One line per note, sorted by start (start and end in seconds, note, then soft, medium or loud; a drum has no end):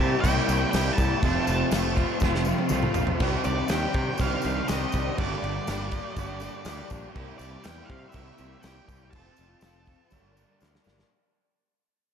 0.00 0.14 C3 loud
0.00 0.22 G3 medium
0.00 0.23 A#3 medium
0.00 0.24 A#3 medium
0.00 0.24 E4 medium
0.00 0.25 E4 medium
0.00 0.24 G4 medium
0.00 0.26 G4 medium
0.00 0.20 A5 loud
0.00 tambourine soft
0.21 0.39 C2 loud
0.21 0.73 C3 medium
0.21 0.71 G3 loud
0.21 0.68 G5 loud
0.21 kick medium
0.21 tambourine medium
0.21 crash loud
0.25 0.51 A#3 loud
0.25 0.49 E4 loud
0.25 0.47 G4 loud
0.48 0.64 C2 medium
0.48 0.73 A#3 medium
0.48 0.73 E4 medium
0.48 0.74 G4 medium
0.48 tambourine medium
0.48 crash medium
0.71 0.89 C2 medium
0.71 1.20 G3 medium
0.71 1.01 A#3 medium
0.71 0.99 E4 medium
0.71 0.93 G5 loud
0.71 snare loud
0.71 tambourine medium
0.71 crash loud
0.76 0.98 G4 medium
0.93 1.65 A5 medium
0.98 1.13 C2 medium
0.98 1.22 E4 medium
0.98 1.21 G4 medium
0.98 kick loud
0.98 tambourine medium
0.98 crash medium
1.03 1.23 A#3 medium
1.23 1.38 F1 loud
1.23 1.72 F2 loud
1.23 1.72 C3 loud
1.23 1.49 F3 loud
1.23 1.48 A3 loud
1.23 1.48 C4 loud
1.23 1.45 F4 loud
1.23 kick loud
1.23 tambourine soft
1.23 crash medium
1.46 1.63 F1 medium
1.46 1.71 F3 medium
1.46 1.72 A3 medium
1.46 1.74 C4 medium
1.46 1.74 F4 medium
1.46 tambourine medium
1.46 crash medium
1.71 2.03 F1 medium
1.71 1.98 F3 medium
1.71 1.97 A3 medium
1.71 1.97 C4 medium
1.71 1.95 F4 medium
1.71 snare loud
1.71 tambourine medium
1.71 crash loud
1.96 2.21 F3 medium
1.96 2.22 A3 medium
1.96 2.22 C4 medium
1.96 2.23 F4 medium
1.96 kick medium
1.96 tambourine soft
1.96 crash medium
2.20 2.52 F1 medium
2.20 2.71 F2 medium
2.20 2.71 C3 medium
2.20 2.48 F3 medium
2.20 2.47 A3 medium
2.20 2.45 C4 loud
2.20 kick medium
2.20 snare medium
2.20 tambourine medium
2.24 2.45 F4 loud
2.35 snare medium
2.45 2.70 A3 medium
2.45 2.71 C4 medium
2.45 2.72 F4 medium
2.45 high tom medium
2.45 tambourine medium
2.49 2.69 F3 medium
2.58 high tom medium
2.69 2.86 C2 medium
2.69 2.96 F3 medium
2.69 2.96 A3 medium
2.69 2.94 C4 medium
2.69 mid tom medium
2.69 tambourine medium
2.73 2.93 F4 medium
2.83 mid tom medium
2.94 3.12 A#1 medium
2.94 3.20 F3 medium
2.94 3.19 A3 medium
2.94 3.19 C4 medium
2.94 3.18 F4 medium
2.94 floor tom loud
2.94 tambourine medium
3.07 floor tom loud
3.19 3.36 C2 loud
3.19 3.69 C3 loud
3.19 3.68 D#3 medium
3.19 3.47 G3 loud
3.19 3.71 C4 loud
3.19 3.46 D4 loud
3.19 3.45 G4 loud
3.19 kick loud
3.19 splash medium
3.19 crash medium
3.44 3.61 C2 medium
3.44 3.70 G3 medium
3.44 3.71 D4 medium
3.44 3.72 G4 medium
3.44 3.68 D5 loud
3.44 tambourine medium
3.44 crash medium
3.68 3.86 D#2 medium
3.68 4.18 D#3 medium
3.68 3.98 G3 medium
3.68 3.96 D4 medium
3.68 4.21 G5 loud
3.68 snare loud
3.68 tambourine medium
3.68 crash medium
3.72 4.21 C4 medium
3.72 3.94 G4 medium
3.93 4.10 C3 medium
3.93 4.20 D4 medium
3.93 4.21 G4 medium
3.93 kick medium
3.93 tambourine soft
3.93 crash medium
3.98 4.20 G3 medium
4.18 4.35 C2 medium
4.18 4.68 C3 medium
4.18 4.67 D#3 loud
4.18 4.47 G3 loud
4.18 4.45 D4 loud
4.18 4.44 G4 loud
4.18 4.68 F5 loud
4.18 kick medium
4.18 tambourine medium
4.18 crash medium
4.22 4.45 C4 loud
4.42 4.60 C2 medium
4.42 4.71 G4 medium
4.42 tambourine medium
4.42 crash medium
4.46 4.69 G3 medium
4.46 4.70 C4 medium
4.46 4.69 D4 medium
4.68 4.85 C2 medium
4.68 5.16 D#3 medium
4.68 4.96 G3 medium
4.68 5.18 C4 medium
4.68 4.94 D4 medium
4.68 4.93 G4 medium
4.68 5.18 D#5 medium
4.68 snare loud
4.68 tambourine medium
4.68 crash medium
4.92 5.09 C2 medium
4.92 5.18 D4 medium
4.92 5.19 G4 medium
4.92 kick medium
4.92 tambourine medium
4.92 crash medium
4.96 5.18 G3 medium
5.16 5.34 G1 loud
5.16 5.67 G2 loud
5.16 5.67 D3 loud
5.16 5.45 G3 loud
5.16 5.43 A#3 loud
5.16 5.42 D4 loud
5.16 5.42 G4 loud
5.16 6.88 D5 loud
5.16 kick loud
5.16 crash medium
5.42 5.58 G1 loud
5.42 5.66 G3 medium
5.42 5.67 A#3 medium
5.42 5.68 D4 medium
5.42 5.70 G4 medium
5.42 crash medium
5.66 5.99 G1 medium
5.66 5.94 G3 medium
5.66 5.92 A#3 medium
5.66 5.92 D4 medium
5.66 5.91 G4 medium
5.66 snare loud
5.66 tambourine medium
5.66 crash medium
5.91 6.16 G3 medium
5.91 6.17 A#3 medium
5.91 6.18 D4 medium
5.91 6.18 G4 medium
5.91 kick medium
5.91 tambourine soft
5.91 crash medium
6.16 6.48 G1 loud
6.16 6.66 G2 medium
6.16 6.66 D3 medium
6.16 6.43 G3 loud
6.16 6.41 A#3 loud
6.16 6.40 D4 loud
6.16 6.39 G4 loud
6.16 kick medium
6.16 tambourine medium
6.16 crash medium
6.40 6.65 A#3 medium
6.40 6.66 D4 medium
6.40 6.68 G4 medium
6.40 tambourine medium
6.40 crash medium
6.44 6.64 G3 medium
6.65 6.81 D2 medium
6.65 6.92 G3 medium
6.65 6.91 A#3 medium
6.65 6.90 D4 medium
6.65 6.89 G4 medium
6.65 snare loud
6.65 tambourine medium
6.65 crash loud
6.90 7.07 A#1 medium
6.90 7.14 G3 medium
6.90 7.14 A#3 medium
6.90 7.15 D4 medium
6.90 7.14 G4 medium
6.90 kick medium
6.90 tambourine medium
6.90 crash medium
7.14 7.31 C2 loud
7.14 7.64 C3 loud
7.14 7.63 G3 loud
7.14 7.40 A#3 loud
7.14 7.39 E4 loud
7.14 7.38 G4 loud
7.14 kick loud
7.14 crash medium
7.38 7.55 C2 medium
7.38 7.63 A#3 medium
7.38 7.65 E4 medium
7.38 7.66 G4 medium
7.38 7.65 D5 medium
7.38 tambourine medium
7.38 crash medium
7.64 7.81 E2 medium
7.64 8.13 G3 medium
7.64 7.91 A#3 medium
7.64 7.89 E4 medium
7.64 7.88 G4 medium
7.64 7.90 G5 medium
7.64 snare loud
7.64 tambourine loud
7.64 crash medium
7.85 8.15 G4 medium
7.85 8.09 F5 medium
7.89 8.05 C3 loud
7.89 8.14 A#3 medium
7.89 8.14 E4 medium
7.89 kick medium
7.89 crash medium
8.09 8.63 C3 loud
8.09 8.63 E5 loud
8.09 tambourine medium
8.14 8.30 C2 loud
8.14 8.62 G3 loud
8.14 8.39 A#3 medium
8.14 8.38 E4 medium
8.14 8.36 G4 loud
8.14 kick medium
8.14 crash medium
8.37 8.55 C2 medium
8.37 8.64 A#3 medium
8.37 8.64 E4 medium
8.37 8.66 G4 medium
8.37 tambourine medium
8.37 crash medium
8.62 8.79 C2 medium
8.62 9.12 G3 medium
8.62 8.90 A#3 medium
8.62 8.89 E4 medium
8.62 9.11 G5 loud
8.62 snare loud
8.62 tambourine medium
8.62 crash medium
8.67 8.87 G4 loud
8.88 9.15 C2 medium
8.88 9.13 A#3 medium
8.88 9.13 E4 medium
8.88 9.12 G4 medium
8.88 kick medium
8.88 tambourine medium
8.88 crash medium
9.11 9.29 F1 loud
9.11 9.61 F3 loud
9.11 9.39 C4 loud
9.11 10.57 A5 loud
9.11 kick loud
9.11 tambourine soft
9.11 crash loud
9.15 9.37 F4 loud
9.15 9.35 A4 loud
9.36 9.54 F1 medium
9.36 9.62 C4 medium
9.36 9.63 F4 medium
9.36 9.64 A4 medium
9.36 tambourine medium
9.36 crash medium
9.61 9.93 F1 medium
9.61 10.10 F3 medium
9.61 9.89 C4 medium
9.61 9.87 F4 medium
9.61 snare loud
9.61 tambourine medium
9.61 crash medium
9.65 9.85 A4 medium
9.86 10.11 F4 medium
9.86 10.10 A4 medium
9.86 kick medium
9.86 tambourine soft
9.86 crash medium
9.90 10.12 C4 medium
10.10 10.44 G1 loud
10.10 10.61 G2 medium
10.10 10.61 D3 medium
10.10 10.36 G3 loud
10.10 10.36 A#3 loud
10.10 10.35 D4 medium
10.10 10.34 A#4 loud
10.10 kick medium
10.10 tambourine medium
10.10 crash medium
10.35 10.57 G3 medium
10.35 10.59 A#3 medium
10.35 10.59 D4 medium
10.35 10.61 A#4 medium
10.35 tambourine medium
10.35 crash medium
10.59 10.77 D2 medium
10.59 10.86 G3 medium
10.59 10.86 A#3 medium
10.59 10.84 D4 medium
10.59 10.83 A#4 medium
10.59 tambourine medium
10.63 snare medium
10.75 snare medium
10.84 11.02 G1 medium
10.84 11.10 G3 medium
10.84 11.10 A#3 medium
10.84 11.09 D4 medium
10.84 11.09 A#4 medium
10.84 snare loud
10.84 tambourine medium
10.99 snare medium